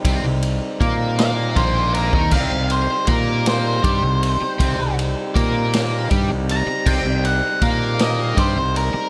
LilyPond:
<<
  \new Staff \with { instrumentName = "Lead electric guitar" } { \time 6/8 \key c \minor \tempo 4. = 53 r4. f''8 c''8 bes'8 | f''8 c''8 bes'8 c''4.~ | c''8 r2 bes''8 | g''8 fis''8 f''8 ees''8 c''8 bes'8 | }
  \new Staff \with { instrumentName = "Harmonium" } { \time 6/8 \key c \minor <g c' ees' g'>2.~ | <g c' ees' g'>2.~ | <g c' ees' g'>2.~ | <g c' ees' g'>2. | }
  \new Staff \with { instrumentName = "Overdriven electric guitar" } { \time 6/8 \key c \minor <c c'>16 c8 r16 <bes bes'>4 <bes, bes>8. <ees ees'>16 | <c c'>16 c8 r16 <bes bes'>4 <g g'>16 c8 r16 | <c c'>16 c8 r16 <bes bes'>4 <g g'>16 c8 r16 | <c c'>16 c8 r16 <bes bes'>4 <g g'>16 c8 r16 | }
  \new Staff \with { instrumentName = "Fingered electric bass" } { \clef bass \time 6/8 \key c \minor c,16 c,8 r16 bes,4 bes,,8. ees,16 | c,16 c,8 r16 bes,4 g,16 c,8 r16 | c,16 c,8 r16 bes,4 g,16 c,8 r16 | c,16 c,8 r16 bes,4 g,16 c,8 r16 | }
  \new DrumStaff \with { instrumentName = "Drums" } \drummode { \time 6/8 <bd cymr>8 cymr8 <bd cymr>8 <cymr sn>8 <bd cymr>8 cymr16 bd16 | <cymc bd>8 cymr8 <bd cymr>8 <cymr sn>8 <bd cymr>8 cymr8 | <bd cymr>8 cymr8 <bd cymr>8 <cymr sn>8 <bd cymr>8 cymr8 | <cymc bd>8 cymr8 <bd cymr>8 <cymr sn>8 <bd cymr>8 cymr8 | }
>>